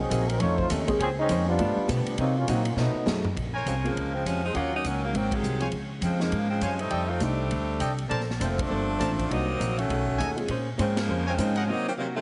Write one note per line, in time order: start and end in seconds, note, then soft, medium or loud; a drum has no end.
0.00 0.27 F#3 medium
0.00 0.28 C4 medium
0.00 0.27 D#4 medium
0.00 0.29 G#4 medium
0.09 0.39 A#1 medium
0.09 0.29 C3 medium
0.09 0.29 F#3 medium
0.09 0.30 A#3 medium
0.09 0.30 D#4 medium
0.09 kick soft
0.09 hi-hat pedal medium
0.09 ride medium
0.28 0.40 F#3 medium
0.28 0.40 C4 medium
0.28 0.38 D#4 medium
0.28 0.40 A#4 medium
0.28 ride medium
0.39 0.58 F2 medium
0.39 0.69 F2 medium
0.39 0.59 D#3 medium
0.39 0.57 A3 medium
0.39 0.60 A3 soft
0.39 0.60 C#4 soft
0.39 0.58 D#4 medium
0.39 0.58 F4 medium
0.39 0.58 C#5 loud
0.39 kick soft
0.39 ride medium
0.58 0.70 A3 medium
0.58 0.70 D#4 medium
0.58 0.70 F4 medium
0.58 0.70 C5 medium
0.58 kick medium
0.69 0.99 D#2 loud
0.69 0.88 F2 medium
0.69 0.89 D#3 medium
0.69 0.89 A3 medium
0.69 0.90 C#4 medium
0.69 hi-hat pedal medium
0.69 ride medium
0.87 0.98 G#3 medium
0.87 0.99 A#3 medium
0.87 0.98 C4 medium
0.87 0.98 C#4 medium
0.87 0.99 G#4 medium
0.87 kick medium
0.87 ride soft
0.98 1.28 C#2 medium
0.98 1.09 F3 loud
0.98 1.18 A#3 medium
0.98 1.09 C4 loud
0.98 1.18 C#4 soft
0.98 1.19 G#4 medium
0.98 1.19 C5 medium
0.98 kick soft
0.98 ride medium
1.02 1.09 C#4 loud
1.02 1.09 G#4 loud
1.20 1.46 G#3 medium
1.20 1.46 C4 medium
1.20 1.46 C#4 medium
1.20 1.46 D#4 loud
1.29 1.58 F2 loud
1.29 1.48 A#3 medium
1.29 1.48 C#4 medium
1.29 1.49 G#4 medium
1.29 1.49 C5 medium
1.29 kick soft
1.29 hi-hat pedal medium
1.29 ride medium
1.48 2.03 G3 medium
1.48 2.03 B3 medium
1.48 2.03 D4 medium
1.48 2.03 F4 loud
1.58 1.77 G2 soft
1.58 1.75 G2 loud
1.58 1.78 F3 medium
1.58 1.75 G3 medium
1.58 1.74 A3 medium
1.58 1.75 B3 medium
1.58 1.79 B3 medium
1.58 1.75 D4 medium
1.58 1.79 D4 medium
1.58 1.75 F4 medium
1.58 kick soft
1.58 ride medium
1.76 muted upright bass stroke soft
1.87 2.07 G2 medium
1.87 2.04 B2 loud
1.87 2.08 F3 medium
1.87 2.17 G3 medium
1.87 2.17 A3 soft
1.87 2.18 B3 soft
1.87 2.08 B3 medium
1.87 2.18 D4 medium
1.87 2.08 D4 medium
1.87 2.18 G4 medium
1.87 kick soft
1.87 hi-hat pedal medium
1.87 ride medium
2.05 2.19 F3 medium
2.05 2.19 G3 medium
2.05 2.19 B3 medium
2.05 2.18 D4 medium
2.05 muted upright bass stroke soft
2.05 ride soft
2.18 2.46 C3 medium
2.18 2.37 C3 medium
2.18 2.37 F#3 soft
2.18 2.35 F#3 medium
2.18 2.35 A#3 medium
2.18 2.38 A#3 medium
2.18 2.35 C4 medium
2.18 2.35 D#4 medium
2.18 2.38 D#4 medium
2.18 kick soft
2.18 ride medium
2.37 2.48 F#3 medium
2.37 2.48 A#3 medium
2.37 2.48 C#4 medium
2.37 2.48 F4 medium
2.47 2.75 A#2 medium
2.47 2.66 C3 medium
2.47 2.66 D#3 medium
2.47 2.63 F#3 medium
2.47 2.67 F#3 medium
2.47 2.63 A#3 soft
2.47 2.67 A#3 medium
2.47 2.65 A#3 medium
2.47 2.63 C4 soft
2.47 2.66 C4 medium
2.47 2.63 D#4 soft
2.47 2.67 D#4 medium
2.47 2.63 F#4 medium
2.47 2.66 F#4 medium
2.47 kick soft
2.47 hi-hat pedal medium
2.47 ride medium
2.65 2.75 F#3 medium
2.65 2.77 A#3 medium
2.65 2.78 C#4 medium
2.65 2.77 F4 medium
2.65 ride medium
2.76 2.95 B2 medium
2.76 2.93 B2 medium
2.76 2.96 F3 medium
2.76 3.21 F#3 medium
2.76 3.21 A3 medium
2.76 2.96 A3 medium
2.76 3.21 B3 medium
2.76 3.21 D#4 medium
2.76 snare soft
2.80 2.97 D#4 medium
2.93 muted upright bass stroke soft
3.06 3.35 F#2 loud
3.06 3.25 B2 medium
3.06 3.26 F3 medium
3.06 3.22 F#3 medium
3.06 3.22 A3 medium
3.06 3.26 A3 medium
3.06 3.22 B3 medium
3.06 3.23 D#4 medium
3.06 3.26 D#4 medium
3.06 3.23 G#4 medium
3.06 snare medium
3.06 hi-hat pedal medium
3.25 floor tom medium
3.36 3.65 A#1 medium
3.36 kick medium
3.36 ride medium
3.54 3.93 A#4 medium
3.54 3.93 C5 medium
3.54 3.93 C#5 medium
3.54 3.93 G#5 medium
3.66 3.94 C2 medium
3.66 3.74 C#3 medium
3.66 3.74 F3 medium
3.66 3.74 G#3 medium
3.66 3.74 C4 medium
3.66 kick soft
3.66 hi-hat pedal medium
3.66 ride medium
3.84 4.12 C#3 medium
3.84 4.12 F3 medium
3.84 3.94 G#3 medium
3.84 4.12 G#3 medium
3.84 4.12 A#3 medium
3.84 3.94 C4 medium
3.84 3.94 C#4 soft
3.84 3.94 F4 medium
3.84 ride soft
3.95 4.24 C#2 medium
3.95 kick soft
3.95 ride soft
4.15 4.26 C#3 medium
4.15 4.25 F3 medium
4.15 4.24 G#3 medium
4.15 4.26 C4 medium
4.25 4.54 F2 medium
4.25 4.43 C3 medium
4.25 4.43 F3 medium
4.25 4.43 G#3 medium
4.25 4.43 C#4 medium
4.25 kick soft
4.25 hi-hat pedal soft
4.25 ride medium
4.44 4.54 F3 medium
4.44 4.54 G#3 medium
4.44 4.54 C4 medium
4.44 4.54 D#4 medium
4.53 4.83 D#2 medium
4.53 4.70 F#3 medium
4.53 4.72 F#3 medium
4.53 4.70 A#3 soft
4.53 4.71 A#3 medium
4.53 4.70 C#4 soft
4.53 4.72 C#4 medium
4.53 4.70 F4 medium
4.53 4.72 F4 medium
4.53 4.99 A#4 medium
4.53 4.98 C#5 medium
4.53 4.98 D#5 medium
4.53 4.98 F#5 medium
4.53 kick soft
4.53 ride soft
4.75 4.85 F#3 medium
4.75 4.85 A#3 medium
4.75 4.85 C#4 medium
4.75 4.85 D#4 medium
4.84 5.13 C#2 medium
4.84 5.03 D#3 medium
4.84 5.03 F#3 medium
4.84 5.03 A#3 medium
4.84 5.03 C#4 medium
4.84 kick soft
4.84 hi-hat pedal medium
4.84 ride medium
5.05 5.14 C#3 medium
5.05 5.14 D#3 medium
5.05 5.14 F#3 medium
5.05 5.14 A#3 medium
5.13 5.42 G#1 medium
5.13 5.32 D#3 medium
5.13 5.32 F#3 medium
5.13 5.33 A#3 medium
5.13 5.33 C4 medium
5.13 kick soft
5.13 ride medium
5.31 5.63 C3 medium
5.31 5.62 D#3 medium
5.31 5.62 F#3 medium
5.31 5.62 G#3 medium
5.31 kick medium
5.31 ride medium
5.43 5.71 C2 medium
5.43 hi-hat pedal soft
5.60 5.71 F3 medium
5.60 5.71 G#3 soft
5.60 5.71 C4 soft
5.60 5.71 F4 medium
5.60 5.69 C5 medium
5.60 5.69 C#5 medium
5.60 5.69 F5 medium
5.60 5.69 G#5 medium
5.60 ride soft
5.72 6.00 C#2 medium
5.72 kick soft
5.72 ride soft
6.01 6.31 F2 medium
6.01 6.20 C#3 medium
6.01 6.19 F3 medium
6.01 6.20 G#3 medium
6.01 6.19 C4 medium
6.01 kick soft
6.01 hi-hat pedal soft
6.01 ride medium
6.19 6.48 C#3 medium
6.19 6.30 F3 medium
6.19 6.48 F3 medium
6.19 6.31 G#3 medium
6.19 6.49 G#3 medium
6.19 6.50 A#3 medium
6.19 6.31 C4 medium
6.19 6.31 D#4 medium
6.19 snare medium
6.31 6.60 G#2 medium
6.31 kick soft
6.31 ride medium
6.49 6.61 C#3 medium
6.49 6.60 F3 medium
6.49 6.61 G#3 medium
6.49 6.61 C4 medium
6.61 6.90 F#2 medium
6.61 6.81 C3 medium
6.61 6.80 F3 medium
6.61 6.80 G#3 medium
6.61 6.80 C#4 medium
6.61 6.74 C5 medium
6.61 6.74 C#5 medium
6.61 6.74 F5 medium
6.61 6.74 G#5 medium
6.61 kick soft
6.61 hi-hat pedal soft
6.61 ride medium
6.79 7.10 G3 medium
6.79 7.08 A3 medium
6.79 7.08 C4 medium
6.79 7.08 D#4 medium
6.79 ride soft
6.90 7.20 F2 medium
6.90 7.03 A4 medium
6.90 7.03 D5 medium
6.90 7.03 D#5 medium
6.90 7.03 G5 medium
6.90 kick soft
6.90 ride medium
7.09 7.21 A3 medium
7.09 7.21 C4 medium
7.09 7.21 D#4 medium
7.09 7.21 F4 medium
7.20 7.50 C2 medium
7.20 7.37 G3 medium
7.20 7.99 G3 medium
7.20 7.37 A3 soft
7.20 7.99 A3 medium
7.20 7.99 C4 medium
7.20 7.37 D4 soft
7.20 7.99 D4 medium
7.20 7.37 D#4 medium
7.20 kick soft
7.20 hi-hat pedal medium
7.20 ride medium
7.50 7.80 D2 medium
7.50 kick soft
7.50 ride medium
7.80 8.09 C2 medium
7.80 7.93 A4 medium
7.80 7.93 D5 medium
7.80 7.93 D#5 medium
7.80 7.93 G5 medium
7.80 kick soft
7.80 hi-hat pedal medium
7.80 ride medium
7.98 ride soft
8.08 8.39 A#1 medium
8.08 8.28 A#3 soft
8.08 8.29 D4 soft
8.08 8.29 A4 medium
8.08 8.22 A#4 medium
8.08 8.22 C5 medium
8.08 8.30 C5 soft
8.08 8.22 D5 medium
8.08 8.22 A5 medium
8.08 kick soft
8.08 ride medium
8.20 snare soft
8.30 snare soft
8.39 8.69 F1 medium
8.39 8.58 D3 medium
8.39 8.58 F3 medium
8.39 8.58 A3 medium
8.39 8.59 A#3 medium
8.39 8.58 C4 medium
8.39 8.59 D4 medium
8.39 8.59 A4 medium
8.39 8.60 C5 medium
8.39 kick soft
8.39 hi-hat pedal medium
8.39 ride medium
8.58 9.30 F3 medium
8.58 9.31 A3 medium
8.58 9.30 C4 medium
8.58 9.30 D4 medium
8.58 kick medium
8.58 ride medium
8.68 8.99 G1 medium
8.68 8.88 A#3 medium
8.68 8.89 D4 soft
8.68 8.89 A4 soft
8.68 8.90 C5 soft
8.99 9.29 A1 medium
8.99 9.16 A3 medium
8.99 9.18 A#3 medium
8.99 9.16 C4 soft
8.99 9.19 D4 medium
8.99 9.16 D4 soft
8.99 9.16 F4 medium
8.99 9.19 A4 medium
8.99 9.12 A#4 medium
8.99 9.12 C5 medium
8.99 9.19 C5 medium
8.99 9.12 D5 medium
8.99 9.12 A5 medium
8.99 kick soft
8.99 hi-hat pedal medium
8.99 ride medium
9.18 kick soft
9.18 ride soft
9.29 9.59 C2 medium
9.29 9.48 C3 soft
9.29 9.78 F#3 medium
9.29 9.45 A#3 medium
9.29 9.49 A#3 soft
9.29 9.78 A#3 medium
9.29 9.78 C4 medium
9.29 9.45 D4 medium
9.29 9.46 D#4 medium
9.29 9.49 D#4 soft
9.29 9.78 D#4 medium
9.29 9.46 F#4 medium
9.29 9.50 F#4 soft
9.29 kick soft
9.29 ride medium
9.58 9.88 A#1 medium
9.58 9.78 C3 medium
9.58 9.78 A#3 medium
9.58 9.79 D#4 medium
9.58 9.79 F#4 medium
9.58 kick soft
9.58 hi-hat pedal medium
9.58 ride medium
9.78 10.38 D#3 medium
9.78 10.38 A3 medium
9.78 10.37 C#4 medium
9.78 10.38 F#4 medium
9.78 ride soft
9.88 10.18 B1 medium
9.88 10.08 B2 soft
9.88 10.08 A3 soft
9.88 10.09 D#4 soft
9.88 10.09 G#4 medium
9.88 kick soft
9.88 ride soft
10.07 kick medium
10.19 10.48 D#2 loud
10.19 10.38 B2 medium
10.19 10.38 A3 medium
10.19 10.38 D#4 medium
10.19 10.39 G#4 medium
10.19 10.31 A4 medium
10.19 10.31 C#5 medium
10.19 10.31 D#5 medium
10.19 10.31 G#5 medium
10.19 kick soft
10.19 hi-hat pedal soft
10.19 ride medium
10.36 10.47 G#3 medium
10.36 10.47 C4 medium
10.36 10.47 C#4 medium
10.36 10.47 F4 medium
10.36 ride soft
10.48 10.77 A#2 medium
10.48 10.68 A#3 medium
10.48 10.68 C#4 soft
10.48 10.69 G#4 medium
10.48 10.69 C5 medium
10.48 kick soft
10.48 ride medium
10.77 11.07 G#2 medium
10.77 10.97 C#3 medium
10.77 10.97 F3 medium
10.77 10.94 G#3 medium
10.77 10.96 G#3 medium
10.77 10.97 A#3 medium
10.77 10.94 C4 soft
10.77 10.96 C4 medium
10.77 10.94 C#4 soft
10.77 10.97 C#4 medium
10.77 10.94 F4 medium
10.77 10.98 G#4 medium
10.77 10.98 C5 medium
10.77 kick soft
10.77 hi-hat pedal soft
10.77 ride medium
10.97 11.27 C#3 medium
10.97 11.27 F3 medium
10.97 11.27 G#3 medium
10.97 11.27 A#3 medium
10.97 snare medium
10.97 ride medium
11.07 11.37 F2 medium
11.07 11.27 A#3 soft
11.07 11.28 C#4 soft
11.07 11.28 G#4 soft
11.07 11.29 C5 medium
11.26 11.38 C#3 medium
11.26 11.38 F3 medium
11.26 11.38 G#3 medium
11.26 11.38 C4 medium
11.26 11.34 A#4 medium
11.26 11.34 C5 medium
11.26 11.34 C#5 medium
11.26 11.34 G#5 medium
11.36 11.67 G#2 medium
11.36 11.56 C#3 medium
11.36 11.56 F3 medium
11.36 11.54 G#3 medium
11.36 11.56 G#3 medium
11.36 11.56 A#3 medium
11.36 11.54 C4 medium
11.36 11.56 C4 medium
11.36 11.57 C#4 medium
11.36 11.54 C#4 soft
11.36 11.54 D#4 medium
11.36 11.58 G#4 medium
11.36 11.58 C5 medium
11.36 kick soft
11.36 hi-hat pedal medium
11.36 ride medium
11.56 11.69 C3 medium
11.56 11.69 F3 medium
11.56 11.69 G#3 medium
11.56 11.69 C#4 medium
11.56 11.64 A#4 medium
11.56 11.64 C5 medium
11.56 11.64 D#5 medium
11.56 11.64 F#5 medium
11.56 ride soft
11.68 11.87 C3 soft
11.68 11.87 F#3 medium
11.68 11.84 A#3 medium
11.68 11.88 A#3 soft
11.68 11.87 A#3 medium
11.68 11.84 C4 medium
11.68 11.87 C4 medium
11.68 11.84 D#4 medium
11.68 11.87 D#4 loud
11.68 11.88 D#4 soft
11.68 11.85 F#4 medium
11.68 11.89 F#4 soft
11.88 11.93 D#3 medium
11.88 11.93 F#3 medium
11.88 11.93 A#3 medium
11.88 11.93 C4 medium
11.97 12.16 C3 medium
11.97 12.06 C3 medium
11.97 12.06 D#3 medium
11.97 12.06 F#3 medium
11.97 12.17 A#3 medium
11.97 12.06 A#3 medium
11.97 12.17 D#4 medium
11.97 12.18 F#4 medium
12.16 12.21 C3 medium
12.16 12.21 D#3 medium
12.16 12.21 F#3 medium
12.16 12.21 A3 medium